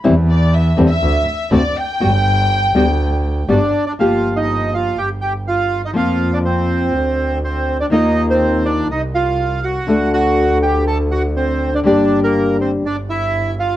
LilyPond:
<<
  \new Staff \with { instrumentName = "Violin section" } { \time 4/4 \key g \major \tempo 4 = 122 r8 d''8 \tuplet 3/2 { e''8. r16 e''8~ } e''4 d''8 g''8~ | g''2. r4 | \key g \minor r1 | r1 |
r1 | r1 | r1 | }
  \new Staff \with { instrumentName = "Bandoneon" } { \time 4/4 \key g \major r1 | r2. <d' d''>8. <d' d''>16 | \key g \minor <f' f''>8. <ees' ees''>8. <f' f''>8 <g' g''>8 <g' g''>8 <f' f''>8. <ees' ees''>16 | <f' f''>8. <d' d''>16 <c' c''>2 <c' c''>8. <d' d''>16 |
<ees' ees''>8. <c' c''>8. <d' d''>8 <ees' ees''>8 <f' f''>4 <fis' fis''>8~ | <fis' fis''>8 <fis' fis''>4 <g' g''>8 <a' a''>8 <fis' fis''>8 <c' c''>8. <d' d''>16 | <d' d''>8. <bes bes'>8. <c' c''>8 <d' d''>8 <e' e''>4 <f' f''>8 | }
  \new Staff \with { instrumentName = "Nylon-string guitar" } { \time 4/4 \key g \major <e g c' e'>8 r4 <d g c'>8 r4 <d a c' fis'>8 r8 | <g b fis'>8 r4 <g b fis'>8 r4 <g b fis'>8 r8 | \key g \minor <f bes g'>2 r2 | <f bes c' f'>2 r2 |
<ees bes ees' f' bes'>2 r2 | <d a d' fis'>1 | <d g bes d' g'>2 r2 | }
  \new Staff \with { instrumentName = "Double bass" } { \clef bass \time 4/4 \key g \major e,4. e,8 d,8 r8 d,8 r8 | g,,4. d,4. g,,8 r8 | \key g \minor g,,2 g,,2 | f,2 d,2 |
ees,2 c,2 | d,1 | g,,2 g,,2 | }
>>